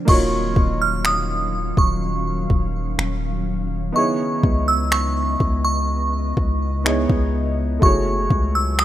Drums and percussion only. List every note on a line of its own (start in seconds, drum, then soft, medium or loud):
0.08 kick loud
0.08 crash medium
0.56 kick medium
1.05 finger snap loud
1.77 kick medium
2.50 kick medium
2.99 finger snap medium
4.43 kick medium
4.92 finger snap loud
5.40 kick medium
6.37 kick medium
6.86 finger snap loud
7.09 kick medium
7.82 kick loud
8.30 kick medium
8.79 finger snap loud